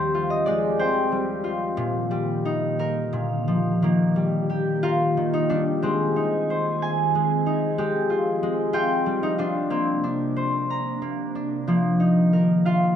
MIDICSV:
0, 0, Header, 1, 3, 480
1, 0, Start_track
1, 0, Key_signature, -3, "major"
1, 0, Tempo, 650759
1, 1306, Time_signature, 6, 3, 24, 8
1, 1306, Tempo, 675676
1, 4186, Tempo, 646552
1, 7066, Tempo, 658617
1, 9438, End_track
2, 0, Start_track
2, 0, Title_t, "Harp"
2, 0, Program_c, 0, 46
2, 0, Note_on_c, 0, 63, 76
2, 0, Note_on_c, 0, 67, 78
2, 0, Note_on_c, 0, 72, 81
2, 0, Note_on_c, 0, 79, 104
2, 107, Note_on_c, 0, 65, 67
2, 223, Note_on_c, 0, 75, 78
2, 317, Note_off_c, 0, 79, 0
2, 338, Note_on_c, 0, 74, 79
2, 350, Note_on_c, 0, 56, 77
2, 383, Note_off_c, 0, 63, 0
2, 383, Note_off_c, 0, 75, 0
2, 583, Note_off_c, 0, 72, 0
2, 586, Note_on_c, 0, 72, 73
2, 586, Note_on_c, 0, 79, 86
2, 825, Note_on_c, 0, 55, 64
2, 1058, Note_off_c, 0, 65, 0
2, 1061, Note_on_c, 0, 65, 68
2, 1306, Note_on_c, 0, 46, 80
2, 1342, Note_off_c, 0, 55, 0
2, 1342, Note_off_c, 0, 56, 0
2, 1545, Note_on_c, 0, 55, 71
2, 1593, Note_off_c, 0, 67, 0
2, 1686, Note_off_c, 0, 74, 0
2, 1716, Note_off_c, 0, 79, 0
2, 1791, Note_on_c, 0, 63, 76
2, 2032, Note_on_c, 0, 70, 82
2, 2058, Note_off_c, 0, 46, 0
2, 2058, Note_off_c, 0, 55, 0
2, 2240, Note_off_c, 0, 72, 0
2, 2269, Note_on_c, 0, 46, 65
2, 2518, Note_on_c, 0, 53, 64
2, 2764, Note_on_c, 0, 51, 73
2, 2775, Note_on_c, 0, 58, 77
2, 2790, Note_off_c, 0, 46, 0
2, 2790, Note_off_c, 0, 53, 0
2, 2862, Note_off_c, 0, 65, 0
2, 3002, Note_on_c, 0, 55, 61
2, 3242, Note_on_c, 0, 67, 61
2, 3478, Note_on_c, 0, 65, 97
2, 3480, Note_off_c, 0, 70, 0
2, 3483, Note_on_c, 0, 70, 75
2, 3712, Note_off_c, 0, 63, 0
2, 3713, Note_off_c, 0, 51, 0
2, 3722, Note_on_c, 0, 51, 66
2, 3751, Note_off_c, 0, 55, 0
2, 3838, Note_on_c, 0, 63, 77
2, 3952, Note_on_c, 0, 62, 89
2, 3961, Note_on_c, 0, 55, 62
2, 3995, Note_off_c, 0, 63, 0
2, 4015, Note_off_c, 0, 62, 0
2, 4185, Note_on_c, 0, 60, 75
2, 4191, Note_on_c, 0, 56, 80
2, 4223, Note_off_c, 0, 51, 0
2, 4223, Note_off_c, 0, 55, 0
2, 4235, Note_off_c, 0, 67, 0
2, 4436, Note_on_c, 0, 63, 62
2, 4688, Note_on_c, 0, 72, 70
2, 4926, Note_on_c, 0, 80, 81
2, 5026, Note_off_c, 0, 70, 0
2, 5098, Note_off_c, 0, 58, 0
2, 5161, Note_off_c, 0, 56, 0
2, 5170, Note_on_c, 0, 56, 61
2, 5319, Note_off_c, 0, 65, 0
2, 5399, Note_off_c, 0, 63, 0
2, 5402, Note_on_c, 0, 63, 66
2, 5632, Note_off_c, 0, 56, 0
2, 5639, Note_on_c, 0, 56, 75
2, 5640, Note_on_c, 0, 67, 71
2, 5685, Note_off_c, 0, 80, 0
2, 5874, Note_on_c, 0, 65, 63
2, 6109, Note_off_c, 0, 56, 0
2, 6118, Note_on_c, 0, 56, 71
2, 6158, Note_off_c, 0, 72, 0
2, 6341, Note_off_c, 0, 65, 0
2, 6344, Note_on_c, 0, 65, 103
2, 6351, Note_on_c, 0, 79, 84
2, 6413, Note_off_c, 0, 60, 0
2, 6588, Note_on_c, 0, 55, 62
2, 6710, Note_off_c, 0, 63, 0
2, 6713, Note_on_c, 0, 63, 86
2, 6757, Note_off_c, 0, 63, 0
2, 6824, Note_off_c, 0, 65, 0
2, 6827, Note_on_c, 0, 65, 64
2, 6833, Note_on_c, 0, 62, 88
2, 7065, Note_on_c, 0, 58, 74
2, 7069, Note_on_c, 0, 60, 73
2, 7101, Note_off_c, 0, 55, 0
2, 7101, Note_off_c, 0, 56, 0
2, 7305, Note_off_c, 0, 62, 0
2, 7308, Note_on_c, 0, 62, 64
2, 7382, Note_off_c, 0, 67, 0
2, 7496, Note_off_c, 0, 79, 0
2, 7547, Note_on_c, 0, 72, 71
2, 7794, Note_on_c, 0, 82, 80
2, 8020, Note_off_c, 0, 58, 0
2, 8023, Note_on_c, 0, 58, 66
2, 8264, Note_off_c, 0, 62, 0
2, 8267, Note_on_c, 0, 62, 61
2, 8502, Note_on_c, 0, 53, 70
2, 8503, Note_off_c, 0, 58, 0
2, 8506, Note_on_c, 0, 58, 68
2, 8670, Note_off_c, 0, 65, 0
2, 8737, Note_on_c, 0, 63, 64
2, 8781, Note_off_c, 0, 62, 0
2, 8814, Note_off_c, 0, 82, 0
2, 8980, Note_on_c, 0, 70, 66
2, 8990, Note_off_c, 0, 72, 0
2, 9216, Note_on_c, 0, 77, 72
2, 9221, Note_on_c, 0, 65, 85
2, 9256, Note_off_c, 0, 60, 0
2, 9438, Note_off_c, 0, 53, 0
2, 9438, Note_off_c, 0, 58, 0
2, 9438, Note_off_c, 0, 63, 0
2, 9438, Note_off_c, 0, 65, 0
2, 9438, Note_off_c, 0, 70, 0
2, 9438, Note_off_c, 0, 77, 0
2, 9438, End_track
3, 0, Start_track
3, 0, Title_t, "Ambient pad"
3, 0, Program_c, 1, 92
3, 0, Note_on_c, 1, 53, 82
3, 0, Note_on_c, 1, 60, 73
3, 0, Note_on_c, 1, 67, 82
3, 1294, Note_off_c, 1, 53, 0
3, 1295, Note_off_c, 1, 60, 0
3, 1296, Note_on_c, 1, 58, 73
3, 1995, Note_off_c, 1, 67, 0
3, 2735, Note_off_c, 1, 58, 0
3, 2762, Note_on_c, 1, 51, 73
3, 2765, Note_on_c, 1, 67, 83
3, 2770, Note_on_c, 1, 58, 69
3, 4177, Note_off_c, 1, 67, 0
3, 4179, Note_off_c, 1, 58, 0
3, 4211, Note_on_c, 1, 68, 85
3, 4212, Note_on_c, 1, 60, 71
3, 5607, Note_off_c, 1, 51, 0
3, 5630, Note_off_c, 1, 68, 0
3, 5631, Note_off_c, 1, 60, 0
3, 5649, Note_on_c, 1, 67, 84
3, 5656, Note_on_c, 1, 53, 70
3, 5662, Note_on_c, 1, 60, 74
3, 7059, Note_off_c, 1, 67, 0
3, 7061, Note_on_c, 1, 62, 89
3, 7063, Note_off_c, 1, 53, 0
3, 7063, Note_on_c, 1, 48, 77
3, 7065, Note_on_c, 1, 58, 71
3, 7066, Note_off_c, 1, 60, 0
3, 8495, Note_off_c, 1, 62, 0
3, 8496, Note_off_c, 1, 48, 0
3, 8496, Note_on_c, 1, 51, 75
3, 8504, Note_on_c, 1, 65, 83
3, 9438, Note_off_c, 1, 51, 0
3, 9438, Note_off_c, 1, 58, 0
3, 9438, Note_off_c, 1, 65, 0
3, 9438, End_track
0, 0, End_of_file